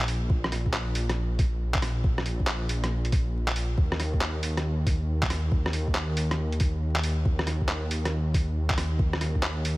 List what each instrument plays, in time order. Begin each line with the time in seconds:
Already playing: detuned saw bass A#1
0.00 clap
0.08 open hi-hat
0.30 kick
0.44 cross-stick
0.52 cross-stick, open hi-hat
0.66 kick
0.73 clap
0.95 open hi-hat
1.09 cross-stick, closed hi-hat
1.39 kick, open hi-hat
1.74 kick, clap
1.82 cross-stick, open hi-hat
2.04 kick
2.18 cross-stick
2.26 open hi-hat
2.40 kick
2.47 clap
2.69 open hi-hat
2.84 cross-stick, closed hi-hat
3.05 closed hi-hat
3.12 kick, open hi-hat
3.48 clap
3.56 open hi-hat
3.77 detuned saw bass D#2, kick
3.92 cross-stick
4.00 cross-stick, open hi-hat
4.14 kick
4.21 clap
4.43 open hi-hat
4.57 cross-stick, closed hi-hat
4.86 kick, open hi-hat
5.22 kick, clap
5.30 cross-stick, open hi-hat
5.52 kick
5.66 cross-stick
5.73 open hi-hat
5.88 kick
5.95 clap
6.17 open hi-hat
6.31 cross-stick, closed hi-hat
6.52 closed hi-hat
6.60 kick, open hi-hat
6.96 clap
7.04 open hi-hat
7.25 kick
7.39 cross-stick
7.47 cross-stick, open hi-hat
7.61 kick
7.69 clap
7.91 open hi-hat
8.05 cross-stick, closed hi-hat
8.34 kick, open hi-hat
8.70 kick, clap
8.78 cross-stick, open hi-hat
8.99 kick
9.13 cross-stick
9.21 cross-stick, open hi-hat
9.35 kick
9.43 clap
9.65 open hi-hat